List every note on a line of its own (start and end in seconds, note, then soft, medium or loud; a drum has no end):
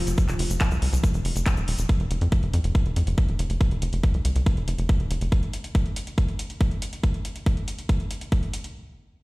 0.00 1.93 F3 medium
0.07 0.14 F1 medium
0.07 closed hi-hat medium
0.07 shaker medium
0.18 kick loud
0.18 closed hi-hat soft
0.18 shaker medium
0.29 0.35 F1 medium
0.29 clap soft
0.29 closed hi-hat soft
0.29 shaker soft
0.39 0.46 F1 loud
0.39 open hi-hat loud
0.50 0.56 F1 medium
0.50 closed hi-hat soft
0.50 shaker medium
0.60 kick loud
0.60 clap loud
0.60 closed hi-hat medium
0.60 shaker medium
0.71 0.78 C2 medium
0.71 closed hi-hat soft
0.71 shaker soft
0.82 0.89 C2 medium
0.82 open hi-hat loud
0.93 0.99 C2 medium
0.93 closed hi-hat soft
0.93 shaker medium
1.04 kick loud
1.04 closed hi-hat medium
1.04 shaker medium
1.14 1.21 F1 medium
1.14 closed hi-hat soft
1.14 shaker soft
1.25 1.31 F1 loud
1.25 open hi-hat loud
1.36 1.42 F1 loud
1.36 closed hi-hat medium
1.36 shaker medium
1.46 kick loud
1.46 clap loud
1.46 closed hi-hat soft
1.46 shaker medium
1.57 1.64 D#1 medium
1.57 closed hi-hat soft
1.57 shaker soft
1.68 1.74 D#1 loud
1.68 open hi-hat loud
1.78 1.85 D#1 medium
1.78 closed hi-hat soft
1.78 shaker medium
1.89 kick loud
1.89 closed hi-hat soft
2.00 2.06 F1 medium
2.00 closed hi-hat soft
2.11 2.17 F1 loud
2.11 closed hi-hat medium
2.21 2.28 F2 medium
2.21 closed hi-hat soft
2.32 kick loud
2.32 closed hi-hat medium
2.43 2.49 F1 medium
2.43 closed hi-hat soft
2.53 2.60 F2 loud
2.53 closed hi-hat medium
2.64 2.71 F1 medium
2.64 closed hi-hat medium
2.75 kick loud
2.75 closed hi-hat soft
2.86 2.92 F1 medium
2.86 closed hi-hat soft
2.96 3.03 F2 medium
2.96 closed hi-hat medium
3.07 3.14 F1 loud
3.07 closed hi-hat medium
3.18 kick loud
3.18 closed hi-hat soft
3.28 3.35 D#1 medium
3.28 closed hi-hat soft
3.39 3.46 F1 loud
3.39 closed hi-hat medium
3.50 3.56 F1 medium
3.50 closed hi-hat medium
3.61 kick loud
3.61 closed hi-hat medium
3.71 3.78 F1 medium
3.71 closed hi-hat soft
3.82 3.89 F1 medium
3.82 closed hi-hat medium
3.93 3.99 F1 medium
3.93 closed hi-hat medium
4.03 kick loud
4.03 closed hi-hat medium
4.14 4.21 C2 medium
4.14 closed hi-hat soft
4.25 4.31 C2 loud
4.25 closed hi-hat medium
4.36 4.42 C2 medium
4.36 closed hi-hat medium
4.46 kick loud
4.46 closed hi-hat medium
4.57 4.64 F1 medium
4.57 closed hi-hat soft
4.68 4.74 F1 loud
4.68 closed hi-hat medium
4.78 4.85 F1 loud
4.78 closed hi-hat soft
4.89 kick loud
4.89 closed hi-hat soft
5.00 5.06 F1 medium
5.00 closed hi-hat soft
5.11 5.17 F1 loud
5.11 closed hi-hat medium
5.21 5.28 F1 medium
5.21 closed hi-hat medium
5.32 kick loud
5.32 closed hi-hat medium
5.43 closed hi-hat soft
5.53 closed hi-hat medium
5.64 closed hi-hat medium
5.75 kick loud
5.75 closed hi-hat medium
5.86 closed hi-hat soft
5.96 closed hi-hat medium
6.07 closed hi-hat medium
6.18 kick loud
6.18 closed hi-hat medium
6.28 closed hi-hat soft
6.39 closed hi-hat medium
6.50 closed hi-hat medium
6.61 kick loud
6.61 closed hi-hat medium
6.71 closed hi-hat soft
6.82 closed hi-hat loud
6.93 closed hi-hat medium
7.03 kick loud
7.03 closed hi-hat medium
7.14 closed hi-hat soft
7.25 closed hi-hat medium
7.36 closed hi-hat medium
7.46 kick loud
7.46 closed hi-hat medium
7.57 closed hi-hat soft
7.68 closed hi-hat medium
7.79 closed hi-hat medium
7.89 kick loud
7.89 closed hi-hat medium
8.00 closed hi-hat soft
8.11 closed hi-hat medium
8.21 closed hi-hat medium
8.32 kick loud
8.32 closed hi-hat medium
8.43 closed hi-hat soft
8.54 closed hi-hat loud
8.64 closed hi-hat medium